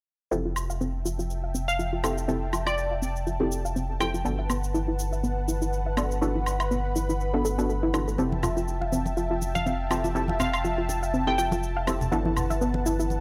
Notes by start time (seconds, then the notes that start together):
0.31 F1 C4 E4 F4 G4 A4 E5 G5 A5, cabasa
0.45 F4
0.56 cabasa, high woodblock
0.70 F5, cabasa
0.81 C4, cabasa
1.05 F4, cabasa
1.19 F4, cabasa
1.30 cabasa
1.44 F5
1.55 C4, cabasa
1.68 F5, cabasa
1.79 F4, cabasa
1.93 F4
2.04 C4 E4 G4 A4, cabasa, high woodblock
2.17 F5, cabasa
2.28 C4 E4 G4 A4, cabasa
2.53 F4, cabasa, high woodblock
2.67 F4 D5, cabasa, high woodblock
2.78 cabasa
2.91 F5
3.02 C4, cabasa
3.16 cabasa
3.27 F4, cabasa
3.40 C4 E4 F4 G4 A4
3.52 cabasa
3.65 F5, cabasa
3.76 C4, cabasa
4.00 C4 E4 F4 G4 A4 G5, cabasa, high woodblock
4.14 F4, cabasa
4.25 G1 B3 D4 F#4 A4 B4 F#5, cabasa
4.39 E5
4.50 B3, cabasa, high woodblock
4.64 cabasa
4.74 E4, cabasa
4.88 E4
4.99 cabasa
5.13 E5, cabasa
5.23 B3, cabasa
5.48 E4, cabasa
5.62 E4, cabasa
5.73 cabasa
5.86 E5
5.97 B3 D4 F#4 A4, cabasa, high woodblock
6.11 cabasa
6.21 B3 D4 E4 F#4 A4 B5, cabasa
6.35 E4
6.46 cabasa, high woodblock
6.60 E5, cabasa, high woodblock
6.71 B3, cabasa
6.96 E4, cabasa
7.09 E4, cabasa
7.21 cabasa
7.34 B3 D4 F#4 A4 E5
7.45 A4, cabasa
7.58 B3 D4 F#4 A4, cabasa
7.69 A4, cabasa
7.83 E4
7.94 B3 D4 E4 F#4 A4, cabasa, high woodblock
8.08 A4, cabasa
8.18 F1 C4 E4 G4 A4 E5 G5 A5, muted conga, cabasa
8.32 high conga
8.43 F4, muted conga, low conga, cabasa, high woodblock
8.57 F4, cabasa
8.68 cabasa
8.81 F5, muted conga
8.92 C4, high conga, cabasa
9.06 muted conga, cabasa
9.17 F4, cabasa
9.31 F4
9.42 muted conga, cabasa
9.55 F5, high conga, cabasa
9.66 C4, muted conga, cabasa
9.90 C4 E4 F4 G4 A4, cabasa, high woodblock
10.04 F4, muted conga, cabasa
10.15 C4 E4 G4 A4, cabasa
10.28 F5, muted conga, high conga
10.39 C4 F5, low conga, cabasa, high woodblock
10.53 F5, cabasa, high woodblock
10.64 F4, muted conga, cabasa
10.78 F4
10.89 muted conga, high conga, cabasa
11.03 F5, cabasa
11.14 C4, cabasa
11.27 C4 E4 G4 A4 G5, muted conga
11.38 F4 G5, cabasa
11.51 F4, muted conga, high conga, cabasa
11.63 cabasa
11.77 F5
11.87 C4 E4 G4 A4, muted conga, cabasa, high woodblock
12.01 low conga, cabasa
12.12 G1 B3 D4 E4 F#4 A4 B4 F#5, muted conga, cabasa
12.25 E4, high conga
12.37 low conga, cabasa, high woodblock
12.50 E5, muted conga, cabasa
12.61 B3, cabasa
12.74 muted conga
12.86 E4, high conga, cabasa
12.99 E4, cabasa
13.10 muted conga, cabasa